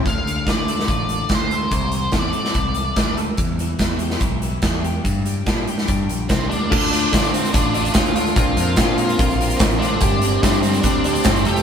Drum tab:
CC |----------------|----------------|----------------|----------------|
HH |x-x-x-x-x-x-x-x-|x-x-x-x-x-x-x-x-|x-x-x-x-x-x-x-x-|x-x-x-x-x-x-x-x-|
SD |----o--o----o---|----o--o----o---|----o--o----o---|----o--o----o---|
BD |o---o---o---o---|o---o---o---o---|o---o---o---o---|o---o---o---o---|

CC |x---------------|----------------|----------------|
HH |--x-xxxxx-xxxxxx|x-x-x-xxxxxxxxx-|x-x-xxxxx-xxxxxx|
SD |----o-------o---|----o-------o---|----o-------o--o|
BD |o---o---o---o---|o---o---o---o---|o---o---o---o---|